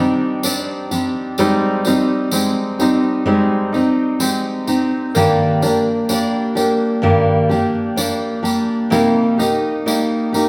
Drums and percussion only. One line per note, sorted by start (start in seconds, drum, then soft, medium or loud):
0.43 tambourine loud
0.91 tambourine medium
1.38 tambourine medium
1.85 tambourine medium
2.31 tambourine medium
2.80 tambourine medium
3.74 tambourine soft
4.20 tambourine medium
4.67 tambourine medium
5.15 tambourine medium
5.62 tambourine medium
6.09 tambourine medium
6.57 tambourine medium
7.51 tambourine soft
7.97 tambourine medium
8.45 tambourine medium
8.92 tambourine medium
9.40 tambourine medium
9.88 tambourine medium
10.34 tambourine medium